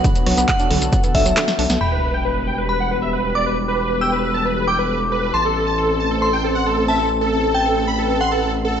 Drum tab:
CC |----------------|x---------------|----------------|----------------|
HH |xxoxxxoxxxoxxxox|----------------|----------------|----------------|
SH |xx-xxx-xxx-xxx-x|----------------|----------------|----------------|
CP |----x-------x---|----------------|----------------|----------------|
SD |--r---------oo-o|----------------|----------------|----------------|
BD |o---o---o-o-----|----------------|----------------|----------------|

CC |----------------|
HH |----------------|
SH |----------------|
CP |----------------|
SD |----------------|
BD |----------------|